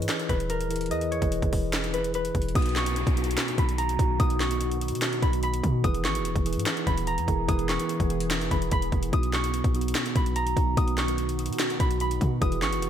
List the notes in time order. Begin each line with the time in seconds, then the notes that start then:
Already playing: E3 E4 G#4 B4 C#5 D#5
0.02 closed hi-hat
0.09 snare, clap, closed hi-hat
0.20 closed hi-hat
0.29 D#1 B4, kick, closed hi-hat
0.40 closed hi-hat
0.50 A#4, closed hi-hat
0.61 closed hi-hat
0.69 E3 E4 G#4 A#4, closed hi-hat
0.76 closed hi-hat
0.81 closed hi-hat
0.86 E3, closed hi-hat
0.90 E2 E4 G#4 B4 D#5, closed hi-hat
1.01 closed hi-hat
1.11 C#5, closed hi-hat
1.20 E1 E3 E4 G#4 B4, kick, closed hi-hat
1.32 closed hi-hat
1.42 E1, kick, closed hi-hat
1.53 kick, open hi-hat
1.73 snare, clap, closed hi-hat
1.84 closed hi-hat
1.92 E3 E4 G#4 B4, closed hi-hat
2.04 closed hi-hat
2.14 B4, closed hi-hat
2.25 closed hi-hat
2.35 E1, kick, closed hi-hat
2.42 closed hi-hat
2.49 closed hi-hat
2.54 B1 B2 D#3 B3 D#4 F#4 D#6, kick, closed hi-hat, downlifter
2.62 closed hi-hat
2.66 closed hi-hat
2.69 closed hi-hat
2.76 C#6, snare, clap, closed hi-hat
2.86 closed hi-hat
2.96 closed hi-hat
3.07 B1, kick, closed hi-hat
3.15 B2 B3 D#4 F#4, closed hi-hat
3.24 closed hi-hat
3.31 closed hi-hat
3.37 snare, clap, closed hi-hat
3.48 closed hi-hat
3.58 B1 B5, kick, closed hi-hat
3.69 closed hi-hat
3.78 A#5, closed hi-hat
3.89 closed hi-hat
3.98 B1 B2 B3 D#4 F#4, kick, closed hi-hat
4.18 B1 B2 B3 D#4 F#4 D#6, kick, closed hi-hat
4.30 closed hi-hat
4.40 C#6, snare, clap, closed hi-hat
4.49 B2 B3 D#4 F#4, closed hi-hat
4.61 closed hi-hat
4.71 closed hi-hat
4.81 closed hi-hat, open hi-hat
4.88 B2, closed hi-hat
4.95 closed hi-hat
5.02 snare, clap, closed hi-hat
5.13 closed hi-hat
5.21 B1 B2 B3 D#4 F#4 B5, kick, closed hi-hat
5.33 closed hi-hat
5.43 B5, closed hi-hat
5.54 closed hi-hat
5.64 B2, kick, closed hi-hat
5.83 E1 E3 E4 G#4 B4 D#6, kick, closed hi-hat
5.94 closed hi-hat
6.04 G#1 C#6, snare, clap, closed hi-hat
6.15 closed hi-hat
6.20 E1
6.25 closed hi-hat
6.36 E1, kick, closed hi-hat
6.44 E3 E4 G#4 B4, closed hi-hat
6.53 G#2, closed hi-hat
6.59 closed hi-hat
6.66 snare, clap, closed hi-hat
6.77 closed hi-hat
6.87 D#1 B5, kick, closed hi-hat
6.97 closed hi-hat
7.07 A#5, closed hi-hat
7.18 E2, closed hi-hat
7.26 E1 E3 E4 G#4 A#4, kick, closed hi-hat
7.47 E1 E3 E4 G#4 B4 D#6, kick, closed hi-hat
7.59 closed hi-hat
7.69 C#6, snare, clap, closed hi-hat
7.78 E3 E4 G#4 B4, closed hi-hat
7.89 closed hi-hat
8.00 E1, kick, closed hi-hat
8.10 closed hi-hat, open hi-hat
8.20 closed hi-hat
8.30 snare, clap, closed hi-hat
8.41 closed hi-hat
8.50 E1 E3 E4 G#4 B4 B5, kick, closed hi-hat
8.62 closed hi-hat
8.71 E1 B5, kick, closed hi-hat
8.82 closed hi-hat
8.92 E1, kick, closed hi-hat
9.03 closed hi-hat
9.11 B1 B2 D#3 B3 D#4 F#4 D#6, kick, closed hi-hat
9.23 closed hi-hat
9.33 C#6, snare, clap, closed hi-hat
9.44 closed hi-hat
9.54 closed hi-hat
9.64 B1, kick, closed hi-hat
9.73 B2 B3 D#4 F#4, closed hi-hat
9.81 closed hi-hat
9.88 closed hi-hat
9.95 snare, clap, closed hi-hat
10.06 closed hi-hat
10.16 B1 B5, kick, closed hi-hat
10.26 closed hi-hat
10.36 A#5, closed hi-hat
10.47 closed hi-hat
10.55 B1 B2 B3 D#4 F#4, kick, closed hi-hat
10.76 B1 B2 B3 D#4 F#4 D#6, kick, closed hi-hat
10.88 closed hi-hat
10.98 C#6, snare, clap, closed hi-hat
11.07 B2 B3 D#4 F#4, closed hi-hat
11.18 closed hi-hat
11.29 closed hi-hat
11.39 closed hi-hat, open hi-hat
11.46 B2, closed hi-hat
11.53 closed hi-hat
11.59 snare, clap, closed hi-hat
11.70 closed hi-hat
11.78 B1 B2 B3 D#4 F#4 B5, kick, closed hi-hat
11.91 closed hi-hat
12.00 B5, closed hi-hat
12.11 closed hi-hat
12.21 B2, kick, closed hi-hat
12.40 E1 E3 B3 E4 G#4 B4 D#6, kick, closed hi-hat
12.52 closed hi-hat
12.62 G#1 C#6, snare, clap, closed hi-hat
12.73 closed hi-hat
12.78 E1
12.82 closed hi-hat